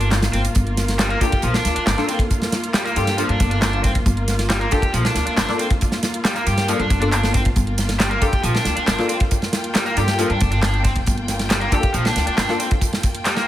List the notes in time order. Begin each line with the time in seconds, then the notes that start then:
Already playing: G1 A#3 D4 F4 A4 F5
0.01 D4, closed hi-hat
0.11 snare, clap, closed hi-hat
0.22 snare, closed hi-hat
0.33 G1 C4, closed hi-hat, ride
0.45 closed hi-hat
0.55 G1, kick, closed hi-hat
0.67 closed hi-hat
0.77 snare, closed hi-hat, ride
0.88 snare, closed hi-hat
0.99 G3, snare, clap, closed hi-hat
1.10 A#3, closed hi-hat
1.21 A#3 D4 F4 G4 A4, kick, closed hi-hat, ride
1.32 kick, closed hi-hat
1.42 A#1 F3, closed hi-hat
1.54 D4, snare, closed hi-hat
1.65 D2, snare, closed hi-hat, ride
1.76 D4, muted upright bass stroke, closed hi-hat
1.86 G1 D4, snare, clap, closed hi-hat
1.98 A#3 D4 F4 A4, snare, closed hi-hat
2.08 C4, closed hi-hat, ride
2.19 kick, closed hi-hat
2.31 kick, closed hi-hat
2.42 snare, closed hi-hat
2.52 snare, closed hi-hat, ride
2.64 closed hi-hat
2.74 G3, snare, clap, closed hi-hat
2.85 A#3, closed hi-hat
2.87 closed hi-hat
2.96 G2 A#3 D4 F4 G4 A4, closed hi-hat, ride
3.07 snare, closed hi-hat
3.18 F3 A#3 D4 F4 A4, closed hi-hat
3.29 G2 D4, closed hi-hat
3.40 G1, kick, closed hi-hat, ride
3.51 D4, closed hi-hat
3.62 D4, snare, clap, closed hi-hat
3.73 closed hi-hat
3.84 C4, kick, closed hi-hat, ride
3.95 kick, closed hi-hat
4.06 G1, kick, closed hi-hat
4.17 closed hi-hat
4.28 snare, closed hi-hat, ride
4.39 snare, closed hi-hat
4.50 G3, snare, clap, closed hi-hat
4.61 A#3, closed hi-hat
4.71 A#3 D4 F4 G4 A4, kick, closed hi-hat, ride
4.82 kick, closed hi-hat
4.93 A#1 F3, closed hi-hat
5.05 D4, snare, closed hi-hat
5.15 D2, snare, closed hi-hat, ride
5.26 D4, muted upright bass stroke, closed hi-hat
5.37 G1 D4, snare, clap, closed hi-hat
5.48 A#3 D4 F4 A4, snare, closed hi-hat
5.59 C4, closed hi-hat, ride
5.70 kick, closed hi-hat
5.81 kick, closed hi-hat
5.92 snare, closed hi-hat
6.03 snare, closed hi-hat, ride
6.14 closed hi-hat
6.25 G3, snare, clap, closed hi-hat
6.36 A#3, closed hi-hat
6.46 G2 G4, closed hi-hat, ride
6.58 snare, closed hi-hat
6.68 F3 A#3 D4 F4 A4, closed hi-hat
6.79 G2 D4, closed hi-hat
6.90 G1, kick, closed hi-hat, ride
7.01 A#3 D4 F4 A4, closed hi-hat
7.12 D4, clap, closed hi-hat
7.23 snare, closed hi-hat
7.34 C4, kick, closed hi-hat, ride
7.45 kick, closed hi-hat
7.56 G1 G5, kick, closed hi-hat
7.67 closed hi-hat
7.78 snare, closed hi-hat, ride
7.89 snare, closed hi-hat
8.00 G3, snare, clap, closed hi-hat
8.11 A#3, closed hi-hat
8.21 A#3 D4 F4 G4 A4, kick, closed hi-hat, ride
8.33 kick, closed hi-hat
8.43 A#1 F3, closed hi-hat
8.55 D4, snare, closed hi-hat
8.65 D2, snare, closed hi-hat, ride
8.76 D4, muted upright bass stroke, closed hi-hat
8.87 G1 D4, snare, clap, closed hi-hat
8.98 A#3 D4 F4 A4, snare, closed hi-hat
9.09 C4, closed hi-hat, ride
9.20 kick, closed hi-hat
9.31 kick, closed hi-hat
9.42 snare, closed hi-hat
9.53 snare, closed hi-hat, ride
9.64 closed hi-hat
9.75 G3, snare, clap, closed hi-hat
9.86 A#3, closed hi-hat
9.97 G2 A#3 D4 F4 G4 A4, closed hi-hat, ride
10.08 snare, closed hi-hat
10.19 F3 A#3 D4 F4 A4, closed hi-hat
10.30 G2 D4, closed hi-hat
10.41 G1, kick, closed hi-hat, ride
10.52 D4, closed hi-hat
10.63 D4, snare, clap, closed hi-hat
10.74 closed hi-hat
10.84 C4, kick, closed hi-hat, ride
10.96 kick, closed hi-hat
11.07 G1, kick, closed hi-hat
11.18 closed hi-hat
11.28 snare, closed hi-hat, ride
11.39 snare, closed hi-hat
11.50 G3, snare, clap, closed hi-hat
11.61 A#3, closed hi-hat
11.72 A#3 D4 F4 G4 A4, kick, closed hi-hat, ride
11.83 kick, closed hi-hat
11.94 A#1 F3, closed hi-hat
12.05 D4, snare, closed hi-hat
12.16 D2, snare, closed hi-hat, ride
12.27 D4, muted upright bass stroke, closed hi-hat
12.38 G1 D4, snare, clap, closed hi-hat
12.49 A#3 D4 F4 A4, snare, closed hi-hat
12.60 C4, closed hi-hat, ride
12.71 kick, closed hi-hat
12.81 kick, closed hi-hat
12.93 snare, closed hi-hat
13.03 kick, closed hi-hat, ride
13.15 closed hi-hat
13.25 G3, snare, clap, closed hi-hat
13.37 A#3, snare, closed hi-hat